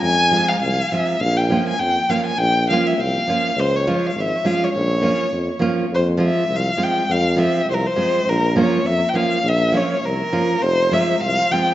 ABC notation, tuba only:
X:1
M:2/4
L:1/8
Q:"Swing 16ths" 1/4=102
K:none
V:1 name="Tuba" clef=bass
F,,2 C,, z | _B,,,2 F,, z | _B,,,2 C,, z | _D,,2 _A,,, z |
_B,,,2 F,, z | F,,2 C,, z | F,,2 C,, z | _B,,,2 F,, z |
_B,,,2 C,, z | F,,,2 C,, z |]